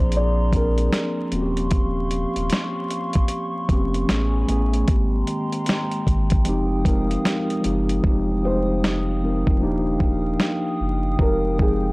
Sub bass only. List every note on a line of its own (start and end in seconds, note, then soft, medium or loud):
0.00 0.89 A#1 medium
1.32 2.25 D#1 loud
2.36 2.49 D#1 loud
3.69 4.05 F1 loud
4.10 4.44 A1 loud
4.49 4.84 A1 medium
4.89 5.23 G#1 loud
6.07 6.42 G#1 medium
6.47 7.17 F1 loud
7.65 8.00 F#1 medium
8.05 9.43 F1 loud
9.48 9.60 F1 medium
9.62 9.97 D#1 loud
10.01 10.36 D#1 loud
10.81 11.16 F#1 loud
11.19 11.93 F1 loud